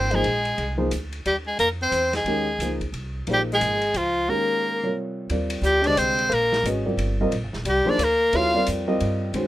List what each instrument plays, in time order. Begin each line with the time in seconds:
Already playing: upright bass G#1, tenor saxophone C4, soprano saxophone C5
0.11 grand piano F3 A#3 D#4 G#4 C5, tenor saxophone G#3, ride
0.15 soprano saxophone G#4
0.24 upright bass A#1, ride
0.45 ride
0.58 upright bass C2, ride
0.78 grand piano F3 A#3 D#4 G#4 C5
0.91 upright bass D2, hi-hat pedal, ride
1.13 ride
1.26 upright bass D#2, tenor saxophone G3, soprano saxophone G4, ride
1.47 tenor saxophone G#3, soprano saxophone G#4
1.59 upright bass F2, tenor saxophone A#3, soprano saxophone A#4, hi-hat pedal, ride
1.82 tenor saxophone C4, soprano saxophone C5
1.92 upright bass E2, hi-hat pedal, ride
2.13 tenor saxophone G#3, soprano saxophone G#4, snare, ride
2.24 upright bass D#2, grand piano D#3 G#3 C#4 G4 A#4, ride
2.59 upright bass C#2, grand piano F3 A#3 D#4 G#4 C5, hi-hat pedal, ride
2.81 kick, ride
2.92 upright bass C2, ride
3.27 upright bass A#1, grand piano F3 A#3 D#4 G#4 C5, tenor saxophone G3, ride
3.34 soprano saxophone G4
3.53 tenor saxophone G#3, soprano saxophone G#4
3.61 upright bass G#1, hi-hat pedal, ride
3.81 ride
3.94 upright bass C#2, tenor saxophone F3, soprano saxophone F4, hi-hat pedal, ride
4.29 grand piano D#3 G#3 C#4 G4 A#4, tenor saxophone A#3, soprano saxophone A#4
4.83 grand piano C3 G3 F4 A#4 C#5
5.30 upright bass D#2, grand piano G3 C4 F4 A#4 D5, ride
5.50 ride
5.62 upright bass D2, tenor saxophone G3, soprano saxophone G4, hi-hat pedal
5.83 grand piano G#3, tenor saxophone D4, soprano saxophone D5, ride
5.87 grand piano D3 G4 C5 D#5
5.96 upright bass C2, tenor saxophone C4, soprano saxophone C5, hi-hat pedal, ride
6.19 ride
6.30 upright bass A#1, tenor saxophone A#3, ride
6.34 soprano saxophone A#4
6.53 snare
6.63 upright bass G#1, grand piano G#3 C#4 F#4 B4 D#5, hi-hat pedal, ride
6.86 grand piano G3 C4 F4 A#4 D5
6.97 upright bass G1, ride
7.21 grand piano G3 C4 F4 A#4 D#5
7.31 upright bass A#1, ride
7.43 upright bass G1
7.53 upright bass D#1, snare
7.65 upright bass C2, tenor saxophone G3, hi-hat pedal, ride
7.69 soprano saxophone G4
7.85 grand piano F3 A#3 D#4 G#4 C5, tenor saxophone D4
7.90 soprano saxophone D5
7.98 upright bass D2, tenor saxophone A#3, hi-hat pedal, ride
8.04 soprano saxophone A#4
8.33 upright bass D#2, grand piano F#3 B3 E4 A4 C#5, tenor saxophone F4, soprano saxophone F5, ride
8.54 grand piano G3 C4 F4 A#4 D5
8.66 upright bass F2, hi-hat pedal, ride
8.87 grand piano G3 C4 F4 A#4 D#5
9.00 upright bass G2, ride
9.33 upright bass F#2, grand piano D#3 G#3 C#4 F#4 C5, ride